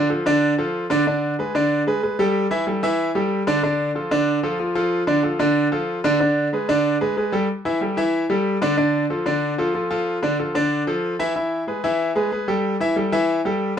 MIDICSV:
0, 0, Header, 1, 2, 480
1, 0, Start_track
1, 0, Tempo, 321888
1, 1576, Time_signature, 4, 2, 24, 8
1, 20568, End_track
2, 0, Start_track
2, 0, Title_t, "Grand piano"
2, 0, Program_c, 0, 0
2, 144, Note_on_c, 0, 53, 79
2, 150, Note_on_c, 0, 65, 69
2, 154, Note_on_c, 0, 69, 69
2, 339, Note_off_c, 0, 53, 0
2, 343, Note_off_c, 0, 65, 0
2, 345, Note_off_c, 0, 69, 0
2, 387, Note_on_c, 0, 50, 97
2, 395, Note_on_c, 0, 62, 103
2, 397, Note_on_c, 0, 74, 104
2, 776, Note_off_c, 0, 50, 0
2, 781, Note_off_c, 0, 62, 0
2, 782, Note_off_c, 0, 74, 0
2, 868, Note_on_c, 0, 53, 81
2, 874, Note_on_c, 0, 65, 87
2, 878, Note_on_c, 0, 69, 81
2, 1256, Note_off_c, 0, 53, 0
2, 1261, Note_off_c, 0, 65, 0
2, 1263, Note_off_c, 0, 69, 0
2, 1343, Note_on_c, 0, 50, 105
2, 1352, Note_on_c, 0, 62, 91
2, 1355, Note_on_c, 0, 74, 110
2, 1537, Note_off_c, 0, 50, 0
2, 1542, Note_off_c, 0, 62, 0
2, 1544, Note_off_c, 0, 74, 0
2, 1594, Note_on_c, 0, 50, 76
2, 1598, Note_on_c, 0, 62, 77
2, 1602, Note_on_c, 0, 74, 79
2, 1980, Note_off_c, 0, 50, 0
2, 1982, Note_off_c, 0, 62, 0
2, 1984, Note_off_c, 0, 74, 0
2, 2072, Note_on_c, 0, 56, 70
2, 2072, Note_on_c, 0, 68, 69
2, 2081, Note_on_c, 0, 71, 75
2, 2262, Note_off_c, 0, 56, 0
2, 2262, Note_off_c, 0, 68, 0
2, 2267, Note_off_c, 0, 71, 0
2, 2308, Note_on_c, 0, 50, 90
2, 2311, Note_on_c, 0, 62, 96
2, 2318, Note_on_c, 0, 74, 102
2, 2695, Note_off_c, 0, 50, 0
2, 2697, Note_off_c, 0, 62, 0
2, 2701, Note_off_c, 0, 74, 0
2, 2786, Note_on_c, 0, 56, 75
2, 2795, Note_on_c, 0, 68, 79
2, 2799, Note_on_c, 0, 71, 90
2, 2977, Note_off_c, 0, 56, 0
2, 2982, Note_off_c, 0, 68, 0
2, 2985, Note_off_c, 0, 71, 0
2, 3024, Note_on_c, 0, 56, 67
2, 3030, Note_on_c, 0, 68, 66
2, 3032, Note_on_c, 0, 71, 77
2, 3216, Note_off_c, 0, 56, 0
2, 3219, Note_off_c, 0, 68, 0
2, 3221, Note_off_c, 0, 71, 0
2, 3266, Note_on_c, 0, 55, 90
2, 3268, Note_on_c, 0, 67, 96
2, 3274, Note_on_c, 0, 69, 96
2, 3653, Note_off_c, 0, 55, 0
2, 3655, Note_off_c, 0, 67, 0
2, 3658, Note_off_c, 0, 69, 0
2, 3737, Note_on_c, 0, 52, 87
2, 3742, Note_on_c, 0, 64, 96
2, 3746, Note_on_c, 0, 76, 93
2, 3931, Note_off_c, 0, 52, 0
2, 3934, Note_off_c, 0, 64, 0
2, 3936, Note_off_c, 0, 76, 0
2, 3980, Note_on_c, 0, 55, 70
2, 3984, Note_on_c, 0, 67, 64
2, 3987, Note_on_c, 0, 69, 79
2, 4173, Note_off_c, 0, 55, 0
2, 4175, Note_off_c, 0, 67, 0
2, 4177, Note_off_c, 0, 69, 0
2, 4218, Note_on_c, 0, 52, 104
2, 4222, Note_on_c, 0, 64, 96
2, 4229, Note_on_c, 0, 76, 104
2, 4608, Note_off_c, 0, 52, 0
2, 4610, Note_off_c, 0, 64, 0
2, 4615, Note_off_c, 0, 76, 0
2, 4698, Note_on_c, 0, 55, 84
2, 4701, Note_on_c, 0, 67, 83
2, 4709, Note_on_c, 0, 69, 81
2, 5088, Note_off_c, 0, 55, 0
2, 5090, Note_off_c, 0, 67, 0
2, 5094, Note_off_c, 0, 69, 0
2, 5176, Note_on_c, 0, 50, 105
2, 5181, Note_on_c, 0, 62, 95
2, 5184, Note_on_c, 0, 74, 111
2, 5370, Note_off_c, 0, 50, 0
2, 5373, Note_off_c, 0, 62, 0
2, 5374, Note_off_c, 0, 74, 0
2, 5417, Note_on_c, 0, 50, 83
2, 5419, Note_on_c, 0, 62, 81
2, 5424, Note_on_c, 0, 74, 87
2, 5807, Note_off_c, 0, 50, 0
2, 5808, Note_off_c, 0, 62, 0
2, 5811, Note_off_c, 0, 74, 0
2, 5892, Note_on_c, 0, 53, 68
2, 5899, Note_on_c, 0, 65, 75
2, 5904, Note_on_c, 0, 69, 67
2, 6087, Note_off_c, 0, 53, 0
2, 6091, Note_off_c, 0, 65, 0
2, 6094, Note_off_c, 0, 69, 0
2, 6132, Note_on_c, 0, 50, 94
2, 6136, Note_on_c, 0, 62, 99
2, 6142, Note_on_c, 0, 74, 92
2, 6524, Note_off_c, 0, 50, 0
2, 6526, Note_off_c, 0, 62, 0
2, 6530, Note_off_c, 0, 74, 0
2, 6611, Note_on_c, 0, 53, 90
2, 6614, Note_on_c, 0, 65, 84
2, 6616, Note_on_c, 0, 69, 83
2, 6806, Note_off_c, 0, 53, 0
2, 6808, Note_off_c, 0, 65, 0
2, 6809, Note_off_c, 0, 69, 0
2, 6849, Note_on_c, 0, 53, 75
2, 6855, Note_on_c, 0, 65, 72
2, 6857, Note_on_c, 0, 69, 68
2, 7045, Note_off_c, 0, 53, 0
2, 7049, Note_off_c, 0, 65, 0
2, 7050, Note_off_c, 0, 69, 0
2, 7088, Note_on_c, 0, 53, 90
2, 7090, Note_on_c, 0, 65, 96
2, 7099, Note_on_c, 0, 69, 87
2, 7481, Note_off_c, 0, 53, 0
2, 7482, Note_off_c, 0, 65, 0
2, 7487, Note_off_c, 0, 69, 0
2, 7563, Note_on_c, 0, 50, 95
2, 7566, Note_on_c, 0, 62, 91
2, 7572, Note_on_c, 0, 74, 92
2, 7761, Note_off_c, 0, 50, 0
2, 7763, Note_off_c, 0, 62, 0
2, 7767, Note_off_c, 0, 74, 0
2, 7802, Note_on_c, 0, 53, 64
2, 7808, Note_on_c, 0, 65, 74
2, 7813, Note_on_c, 0, 69, 74
2, 8001, Note_off_c, 0, 53, 0
2, 8004, Note_off_c, 0, 65, 0
2, 8007, Note_off_c, 0, 69, 0
2, 8043, Note_on_c, 0, 62, 89
2, 8045, Note_on_c, 0, 50, 106
2, 8050, Note_on_c, 0, 74, 101
2, 8438, Note_off_c, 0, 62, 0
2, 8439, Note_off_c, 0, 50, 0
2, 8442, Note_off_c, 0, 74, 0
2, 8526, Note_on_c, 0, 53, 84
2, 8530, Note_on_c, 0, 65, 88
2, 8536, Note_on_c, 0, 69, 84
2, 8920, Note_off_c, 0, 53, 0
2, 8922, Note_off_c, 0, 65, 0
2, 8926, Note_off_c, 0, 69, 0
2, 9009, Note_on_c, 0, 50, 110
2, 9014, Note_on_c, 0, 62, 96
2, 9021, Note_on_c, 0, 74, 101
2, 9205, Note_off_c, 0, 50, 0
2, 9208, Note_off_c, 0, 62, 0
2, 9212, Note_off_c, 0, 74, 0
2, 9249, Note_on_c, 0, 50, 84
2, 9252, Note_on_c, 0, 62, 79
2, 9254, Note_on_c, 0, 74, 80
2, 9642, Note_off_c, 0, 50, 0
2, 9643, Note_off_c, 0, 62, 0
2, 9644, Note_off_c, 0, 74, 0
2, 9733, Note_on_c, 0, 56, 72
2, 9741, Note_on_c, 0, 68, 76
2, 9746, Note_on_c, 0, 71, 70
2, 9927, Note_off_c, 0, 56, 0
2, 9932, Note_off_c, 0, 68, 0
2, 9935, Note_off_c, 0, 71, 0
2, 9971, Note_on_c, 0, 50, 93
2, 9976, Note_on_c, 0, 62, 104
2, 9980, Note_on_c, 0, 74, 102
2, 10363, Note_off_c, 0, 50, 0
2, 10366, Note_off_c, 0, 62, 0
2, 10368, Note_off_c, 0, 74, 0
2, 10453, Note_on_c, 0, 56, 84
2, 10454, Note_on_c, 0, 68, 82
2, 10458, Note_on_c, 0, 71, 83
2, 10647, Note_off_c, 0, 56, 0
2, 10648, Note_off_c, 0, 68, 0
2, 10650, Note_off_c, 0, 71, 0
2, 10690, Note_on_c, 0, 56, 79
2, 10692, Note_on_c, 0, 68, 74
2, 10698, Note_on_c, 0, 71, 77
2, 10886, Note_off_c, 0, 56, 0
2, 10887, Note_off_c, 0, 68, 0
2, 10891, Note_off_c, 0, 71, 0
2, 10922, Note_on_c, 0, 55, 88
2, 10930, Note_on_c, 0, 67, 85
2, 10930, Note_on_c, 0, 69, 93
2, 11121, Note_off_c, 0, 55, 0
2, 11125, Note_off_c, 0, 67, 0
2, 11126, Note_off_c, 0, 69, 0
2, 11410, Note_on_c, 0, 52, 90
2, 11412, Note_on_c, 0, 64, 90
2, 11421, Note_on_c, 0, 76, 89
2, 11605, Note_off_c, 0, 52, 0
2, 11607, Note_off_c, 0, 64, 0
2, 11612, Note_off_c, 0, 76, 0
2, 11647, Note_on_c, 0, 55, 71
2, 11654, Note_on_c, 0, 67, 76
2, 11657, Note_on_c, 0, 69, 63
2, 11844, Note_off_c, 0, 55, 0
2, 11848, Note_off_c, 0, 67, 0
2, 11850, Note_off_c, 0, 69, 0
2, 11886, Note_on_c, 0, 52, 96
2, 11888, Note_on_c, 0, 64, 95
2, 11894, Note_on_c, 0, 76, 101
2, 12280, Note_off_c, 0, 52, 0
2, 12282, Note_off_c, 0, 64, 0
2, 12285, Note_off_c, 0, 76, 0
2, 12372, Note_on_c, 0, 55, 89
2, 12374, Note_on_c, 0, 67, 81
2, 12385, Note_on_c, 0, 69, 85
2, 12764, Note_off_c, 0, 55, 0
2, 12765, Note_off_c, 0, 67, 0
2, 12772, Note_off_c, 0, 69, 0
2, 12850, Note_on_c, 0, 50, 109
2, 12856, Note_on_c, 0, 62, 101
2, 12860, Note_on_c, 0, 74, 101
2, 13046, Note_off_c, 0, 50, 0
2, 13050, Note_off_c, 0, 62, 0
2, 13052, Note_off_c, 0, 74, 0
2, 13084, Note_on_c, 0, 50, 83
2, 13088, Note_on_c, 0, 62, 86
2, 13095, Note_on_c, 0, 74, 80
2, 13480, Note_off_c, 0, 50, 0
2, 13482, Note_off_c, 0, 62, 0
2, 13486, Note_off_c, 0, 74, 0
2, 13569, Note_on_c, 0, 53, 72
2, 13574, Note_on_c, 0, 65, 72
2, 13574, Note_on_c, 0, 69, 71
2, 13766, Note_off_c, 0, 53, 0
2, 13769, Note_off_c, 0, 65, 0
2, 13769, Note_off_c, 0, 69, 0
2, 13806, Note_on_c, 0, 50, 95
2, 13812, Note_on_c, 0, 62, 88
2, 13813, Note_on_c, 0, 74, 100
2, 14201, Note_off_c, 0, 50, 0
2, 14205, Note_off_c, 0, 62, 0
2, 14205, Note_off_c, 0, 74, 0
2, 14290, Note_on_c, 0, 53, 88
2, 14296, Note_on_c, 0, 65, 83
2, 14301, Note_on_c, 0, 69, 90
2, 14487, Note_off_c, 0, 53, 0
2, 14490, Note_off_c, 0, 65, 0
2, 14493, Note_off_c, 0, 69, 0
2, 14527, Note_on_c, 0, 53, 80
2, 14532, Note_on_c, 0, 65, 75
2, 14534, Note_on_c, 0, 69, 72
2, 14725, Note_off_c, 0, 53, 0
2, 14728, Note_off_c, 0, 65, 0
2, 14729, Note_off_c, 0, 69, 0
2, 14771, Note_on_c, 0, 53, 88
2, 14771, Note_on_c, 0, 65, 95
2, 14778, Note_on_c, 0, 69, 85
2, 15165, Note_off_c, 0, 53, 0
2, 15165, Note_off_c, 0, 65, 0
2, 15168, Note_off_c, 0, 69, 0
2, 15248, Note_on_c, 0, 50, 95
2, 15254, Note_on_c, 0, 62, 86
2, 15260, Note_on_c, 0, 74, 91
2, 15446, Note_off_c, 0, 50, 0
2, 15450, Note_off_c, 0, 62, 0
2, 15453, Note_off_c, 0, 74, 0
2, 15496, Note_on_c, 0, 53, 64
2, 15499, Note_on_c, 0, 65, 74
2, 15501, Note_on_c, 0, 69, 74
2, 15691, Note_off_c, 0, 53, 0
2, 15692, Note_off_c, 0, 65, 0
2, 15694, Note_off_c, 0, 69, 0
2, 15728, Note_on_c, 0, 50, 89
2, 15736, Note_on_c, 0, 62, 104
2, 15741, Note_on_c, 0, 74, 102
2, 16123, Note_off_c, 0, 50, 0
2, 16128, Note_off_c, 0, 62, 0
2, 16131, Note_off_c, 0, 74, 0
2, 16212, Note_on_c, 0, 53, 91
2, 16214, Note_on_c, 0, 65, 76
2, 16221, Note_on_c, 0, 69, 81
2, 16606, Note_off_c, 0, 53, 0
2, 16607, Note_off_c, 0, 65, 0
2, 16611, Note_off_c, 0, 69, 0
2, 16690, Note_on_c, 0, 52, 91
2, 16696, Note_on_c, 0, 64, 103
2, 16698, Note_on_c, 0, 76, 102
2, 16888, Note_off_c, 0, 52, 0
2, 16891, Note_off_c, 0, 64, 0
2, 16893, Note_off_c, 0, 76, 0
2, 16936, Note_on_c, 0, 52, 69
2, 16938, Note_on_c, 0, 64, 77
2, 16941, Note_on_c, 0, 76, 79
2, 17329, Note_off_c, 0, 52, 0
2, 17330, Note_off_c, 0, 64, 0
2, 17332, Note_off_c, 0, 76, 0
2, 17408, Note_on_c, 0, 56, 67
2, 17412, Note_on_c, 0, 68, 71
2, 17419, Note_on_c, 0, 71, 74
2, 17607, Note_off_c, 0, 56, 0
2, 17610, Note_off_c, 0, 68, 0
2, 17613, Note_off_c, 0, 71, 0
2, 17652, Note_on_c, 0, 52, 102
2, 17653, Note_on_c, 0, 64, 92
2, 17662, Note_on_c, 0, 76, 90
2, 18047, Note_off_c, 0, 52, 0
2, 18048, Note_off_c, 0, 64, 0
2, 18053, Note_off_c, 0, 76, 0
2, 18125, Note_on_c, 0, 56, 90
2, 18130, Note_on_c, 0, 68, 82
2, 18136, Note_on_c, 0, 71, 79
2, 18326, Note_off_c, 0, 56, 0
2, 18329, Note_off_c, 0, 68, 0
2, 18333, Note_off_c, 0, 71, 0
2, 18370, Note_on_c, 0, 56, 71
2, 18371, Note_on_c, 0, 68, 76
2, 18379, Note_on_c, 0, 71, 78
2, 18569, Note_off_c, 0, 56, 0
2, 18569, Note_off_c, 0, 68, 0
2, 18575, Note_off_c, 0, 71, 0
2, 18607, Note_on_c, 0, 55, 79
2, 18610, Note_on_c, 0, 67, 92
2, 18614, Note_on_c, 0, 69, 92
2, 19005, Note_off_c, 0, 55, 0
2, 19007, Note_off_c, 0, 67, 0
2, 19009, Note_off_c, 0, 69, 0
2, 19093, Note_on_c, 0, 52, 88
2, 19096, Note_on_c, 0, 64, 86
2, 19103, Note_on_c, 0, 76, 99
2, 19292, Note_off_c, 0, 52, 0
2, 19293, Note_off_c, 0, 64, 0
2, 19298, Note_off_c, 0, 76, 0
2, 19329, Note_on_c, 0, 55, 70
2, 19333, Note_on_c, 0, 67, 74
2, 19338, Note_on_c, 0, 69, 75
2, 19529, Note_off_c, 0, 55, 0
2, 19532, Note_off_c, 0, 67, 0
2, 19534, Note_off_c, 0, 69, 0
2, 19570, Note_on_c, 0, 52, 102
2, 19572, Note_on_c, 0, 64, 92
2, 19578, Note_on_c, 0, 76, 102
2, 19967, Note_off_c, 0, 52, 0
2, 19968, Note_off_c, 0, 64, 0
2, 19972, Note_off_c, 0, 76, 0
2, 20058, Note_on_c, 0, 55, 74
2, 20062, Note_on_c, 0, 67, 84
2, 20068, Note_on_c, 0, 69, 85
2, 20453, Note_off_c, 0, 55, 0
2, 20455, Note_off_c, 0, 67, 0
2, 20459, Note_off_c, 0, 69, 0
2, 20568, End_track
0, 0, End_of_file